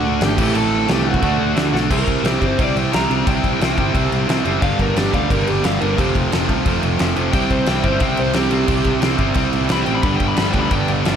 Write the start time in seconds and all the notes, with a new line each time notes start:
Already playing: D3 A3 D4 F#4 F#5
0.05 D2
0.21 G#1 G4 G5, snare, crash
0.37 A1 A2 E3 A3 C4 E4, kick, crash
0.55 A1 A4 A5, crash
0.88 C2 A2 E3 A3 G4 G5, snare, crash
1.09 F#4 F#5
1.14 kick
1.22 D2 D3 A3 D4 F#4, kick, crash
1.40 D2
1.56 D2, snare, crash
1.73 B1 D3 A3 D4, snare
1.90 C2 C3 G3 C4 E4 A#4, kick, crash
2.08 C2, kick, crash
2.23 C2 C3 G3 C4 E4 G4, snare, crash
2.40 G1 C3 G3 C4 E4, kick, crash
2.45 C5
2.58 C2 C3 G3 C4 E4 D5, kick, crash
2.76 C2 G5, crash
2.92 C2 C3 G3 C4 E4 A#5, snare, crash
3.09 C2 C3 G3 C4 E4, crash
3.25 C2 C3 G3 C4 E4 G5, kick, crash
3.44 C2, kick, crash
3.60 C2 C3 G3 C4 E4, snare, crash
3.78 G1 C3 G3 C4 E4, kick, crash
3.94 C2 C3 G3 C4 E4, kick, crash
4.12 C2, crash
4.27 C2 C3 G3 C4 E4, snare, crash
4.45 F#1 C3 G3 C4 E4, crash
4.61 G1 G2 D3 G3 B3 D4 F5, kick, crash
4.79 G1 A#4, kick, crash
4.96 G1 G2 D3 G3 B3 D4 G4, snare, crash
5.13 D2 G2 D3 G3 B3 D4 F5, kick, crash
5.30 G1 G2 D3 G3 B3 D4 A#4, kick, crash
5.47 G1 G4, crash
5.63 G1 G2 D3 G3 B3 D4 F5, snare, crash
5.80 G1 G2 D3 G3 B3 D4 A#4, crash
5.97 F1 F2 C3 F3 A3 C4 G4, kick, crash
6.15 F1 F4, kick, crash
6.31 F1 F2 C3 F3 A3 C4, snare, crash
6.48 C2 F2 C3 F3 A3 C4, kick, crash
6.66 F1 F2 C3 F3 A3 C4, kick, crash
6.83 F1, crash
6.99 F1 F2 C3 F3 A3 C4, snare, crash
7.16 F1 F2 C3 F3 A3 C4, crash
7.32 C2 C3 G3 C4 E4 G5, kick, crash
7.50 C2 C5, kick, crash
7.66 C2 C3 G3 C4 E4 G5, snare, crash
7.83 G1 C3 G3 C4 E4 C5, kick, crash
8.00 C2 C3 G3 C4 E4 G5, kick, crash
8.17 C2 C5, crash
8.33 C2 C3 G3 C4 E4 G4, snare, crash
8.51 C2 C3 G3 C4 E4, crash
8.66 C2 C3 G3 C4 E4, kick, crash
8.84 C2, kick, crash
9.00 C2 C3 G3 C4 E4, snare, crash
9.18 G1 C3 G3 C4 E4, kick, crash
9.34 C2 C3 G3 C4 E4, kick, crash
9.53 C2, crash
9.69 C2 C3 G3 C4 E4 B5, snare, crash
9.81 G5
9.86 A1 C3 G3 C4 E4, crash
9.95 B5
10.03 G1 G2 D3 G3 B3 D4 B5, kick, crash
10.16 G5, crash
10.20 G1, kick
10.28 B5
10.36 G1 G2 D3 G3 B3 D4 B5, snare, crash
10.50 D3 G3 B3 D4 G5, kick, crash
10.54 D2 G2
10.59 B5
10.71 G1 G2 D3 G3 B3 D4 G5, kick, crash
10.88 G1, crash
11.05 G1 G2 D3 G3 B3 D4, snare, crash